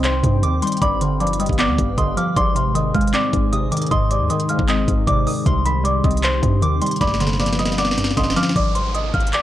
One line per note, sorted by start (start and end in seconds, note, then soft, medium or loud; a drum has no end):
0.00 0.22 C2 loud
0.00 0.22 C3 loud
0.00 0.41 D#3 medium
0.00 0.61 G3 medium
0.00 0.80 C4 medium
0.00 0.82 C4 medium
0.00 0.78 D#4 medium
0.00 0.78 C5 medium
0.00 0.80 G5 medium
0.00 closed hi-hat medium
0.04 0.82 C5 loud
0.04 0.78 C5 medium
0.04 0.78 C6 medium
0.04 clap loud
0.23 0.44 G2 loud
0.23 0.81 C3 medium
0.23 kick loud
0.23 closed hi-hat medium
0.43 0.61 D#2 loud
0.43 0.81 D#3 medium
0.43 0.61 D6 medium
0.43 closed hi-hat medium
0.62 0.82 G3 medium
0.62 0.81 C6 medium
0.62 closed hi-hat medium
0.67 closed hi-hat medium
0.72 closed hi-hat medium
0.77 closed hi-hat medium
0.82 1.47 G1 loud
0.82 1.77 G2 loud
0.82 2.35 G3 medium
0.82 2.35 G4 medium
0.82 2.35 B4 medium
0.82 0.98 D5 medium
0.82 2.35 F5 loud
0.82 1.55 B5 loud
0.82 0.97 D6 loud
0.82 kick loud
0.82 closed hi-hat medium
1.01 1.97 D3 medium
1.01 1.17 C5 medium
1.01 1.17 C6 medium
1.01 closed hi-hat medium
1.20 2.16 F3 medium
1.20 1.36 D5 medium
1.20 1.36 D6 medium
1.20 closed hi-hat soft
1.27 closed hi-hat medium
1.33 closed hi-hat medium
1.40 2.36 G3 medium
1.40 1.56 D#5 medium
1.40 1.55 D#6 medium
1.40 closed hi-hat medium
1.46 1.70 G1 loud
1.46 kick medium
1.46 closed hi-hat medium
1.53 closed hi-hat soft
1.59 2.36 B3 loud
1.59 1.96 D5 medium
1.59 1.95 D6 medium
1.59 clap loud
1.59 closed hi-hat medium
1.69 1.78 D2 loud
1.78 1.97 G1 loud
1.78 2.37 G2 medium
1.78 kick loud
1.78 closed hi-hat medium
1.98 2.16 G1 loud
1.98 2.37 D3 medium
1.98 2.14 D#5 medium
1.98 2.16 C6 medium
1.98 2.13 D#6 medium
1.98 kick loud
1.98 closed hi-hat medium
2.17 2.36 F3 medium
2.17 2.33 F5 medium
2.17 2.36 D6 medium
2.17 2.33 F6 medium
2.17 closed hi-hat medium
2.36 2.92 G#1 loud
2.36 3.32 G#2 loud
2.36 5.43 G#3 medium
2.36 6.97 D#4 medium
2.36 5.43 G#4 medium
2.36 5.43 C5 medium
2.36 2.53 D5 medium
2.36 3.10 C6 loud
2.36 2.52 D6 loud
2.36 kick loud
2.36 closed hi-hat medium
2.55 3.52 C3 medium
2.55 2.72 C5 medium
2.55 2.71 C6 medium
2.55 closed hi-hat medium
2.75 3.70 D#3 medium
2.75 2.91 D#5 medium
2.75 2.91 D#6 medium
2.75 closed hi-hat medium
2.94 3.13 G#1 loud
2.94 3.91 G#3 medium
2.94 3.11 F5 medium
2.94 3.10 F6 medium
2.94 kick medium
2.94 closed hi-hat soft
3.01 closed hi-hat medium
3.07 closed hi-hat medium
3.14 4.11 C4 loud
3.14 3.88 D5 medium
3.14 3.87 D6 medium
3.14 clap loud
3.14 closed hi-hat medium
3.33 3.70 G#1 loud
3.33 3.90 G#2 medium
3.33 kick loud
3.33 closed hi-hat medium
3.52 4.10 C3 medium
3.52 3.71 D#6 medium
3.52 closed hi-hat medium
3.72 4.29 D#3 medium
3.72 3.90 D6 medium
3.72 closed hi-hat medium
3.77 closed hi-hat medium
3.82 closed hi-hat medium
3.86 closed hi-hat medium
3.91 4.22 G#1 loud
3.91 4.86 G#2 loud
3.91 4.07 D#5 medium
3.91 4.65 C6 loud
3.91 4.07 D#6 loud
3.91 kick loud
3.91 closed hi-hat medium
4.11 5.05 C3 medium
4.11 4.27 D5 medium
4.11 4.26 D6 medium
4.11 closed hi-hat medium
4.20 4.29 D#2 loud
4.30 5.26 D#3 medium
4.30 4.46 D#5 medium
4.30 4.46 D#6 medium
4.30 closed hi-hat medium
4.40 closed hi-hat medium
4.49 5.46 G#3 medium
4.49 4.65 F5 medium
4.49 4.65 F6 medium
4.49 closed hi-hat medium
4.59 4.87 G#1 loud
4.59 kick loud
4.68 5.46 C4 loud
4.68 5.05 D#5 medium
4.68 5.05 D#6 medium
4.68 clap loud
4.68 closed hi-hat medium
4.88 5.07 G#1 loud
4.88 5.46 G#2 medium
4.88 kick loud
4.88 closed hi-hat medium
5.07 5.26 G#1 loud
5.07 5.45 C3 medium
5.07 5.44 D5 medium
5.07 5.26 D6 medium
5.07 5.44 D6 medium
5.07 kick loud
5.07 closed hi-hat medium
5.27 5.46 D#3 medium
5.27 5.45 D#6 medium
5.27 open hi-hat medium
5.46 6.02 C2 loud
5.46 6.41 C3 medium
5.46 6.99 C3 medium
5.46 6.99 C4 medium
5.46 6.99 G4 medium
5.46 5.62 C5 medium
5.46 5.62 C6 loud
5.46 6.20 C6 loud
5.46 kick loud
5.46 closed hi-hat medium
5.65 6.61 D#3 medium
5.65 5.81 B5 medium
5.65 5.82 B6 medium
5.65 closed hi-hat medium
5.84 6.80 G3 medium
5.84 6.01 D5 medium
5.84 6.00 D6 medium
5.84 closed hi-hat medium
6.04 6.41 C2 loud
6.04 7.01 C4 medium
6.04 6.20 D#5 medium
6.04 6.20 D#6 medium
6.04 kick medium
6.04 closed hi-hat soft
6.11 closed hi-hat medium
6.17 closed hi-hat medium
6.23 7.01 C5 loud
6.23 6.97 C5 medium
6.23 6.97 C6 medium
6.23 clap loud
6.23 closed hi-hat medium
6.42 6.64 G2 loud
6.42 7.01 C3 medium
6.42 kick loud
6.42 closed hi-hat medium
6.62 6.81 D#2 loud
6.62 7.01 D#3 medium
6.62 6.81 D6 medium
6.62 closed hi-hat medium
6.82 7.01 G3 medium
6.82 7.00 C6 medium
6.82 closed hi-hat medium
6.86 closed hi-hat medium
6.91 closed hi-hat medium
6.96 closed hi-hat soft
7.01 8.13 G1 loud
7.01 7.97 G2 loud
7.01 8.54 G3 medium
7.01 8.54 D4 medium
7.01 8.54 B4 medium
7.01 7.17 D5 medium
7.01 8.54 F5 loud
7.01 7.74 B5 loud
7.01 7.17 D6 loud
7.01 kick loud
7.01 snare medium
7.01 closed hi-hat medium
7.07 snare medium
7.14 snare medium
7.20 8.16 D3 medium
7.20 7.36 C5 medium
7.20 7.36 C6 medium
7.20 snare medium
7.20 closed hi-hat medium
7.27 snare medium
7.33 snare medium
7.40 8.35 F3 medium
7.40 7.56 D5 medium
7.40 7.55 D6 medium
7.40 snare medium
7.40 closed hi-hat soft
7.46 snare medium
7.46 closed hi-hat medium
7.53 snare medium
7.53 closed hi-hat medium
7.59 8.56 G3 medium
7.59 7.75 D#5 medium
7.59 7.75 D#6 medium
7.59 snare medium
7.59 closed hi-hat medium
7.65 snare medium
7.65 closed hi-hat medium
7.72 snare medium
7.72 closed hi-hat soft
7.78 8.56 B3 loud
7.78 8.15 D5 medium
7.78 8.15 D6 medium
7.78 snare medium
7.78 closed hi-hat medium
7.85 snare medium
7.91 snare medium
7.98 8.56 G2 medium
7.98 snare medium
7.98 closed hi-hat medium
8.04 snare loud
8.11 snare medium
8.17 8.36 G1 loud
8.17 8.56 D3 medium
8.17 8.33 D#5 medium
8.17 8.35 C6 medium
8.17 8.33 D#6 medium
8.17 kick loud
8.17 snare loud
8.17 closed hi-hat medium
8.24 snare medium
8.30 snare loud
8.36 8.56 F3 medium
8.36 8.53 F5 medium
8.36 8.55 D6 medium
8.36 8.52 F6 medium
8.36 snare medium
8.36 closed hi-hat medium
8.43 snare loud
8.49 snare loud
8.56 9.12 G#1 loud
8.56 8.72 D5 medium
8.56 8.71 D6 medium
8.56 kick loud
8.56 closed hi-hat medium
8.56 downlifter medium
8.75 8.91 C5 medium
8.75 8.91 C6 medium
8.75 closed hi-hat medium
8.95 9.11 D#5 medium
8.95 9.10 D#6 medium
8.95 closed hi-hat medium
9.14 9.32 G#1 loud
9.14 9.30 F5 medium
9.14 9.29 F6 medium
9.14 kick medium
9.14 closed hi-hat soft
9.20 closed hi-hat medium
9.27 closed hi-hat medium
9.33 9.42 D5 medium
9.33 9.42 D6 medium
9.33 clap loud
9.33 closed hi-hat medium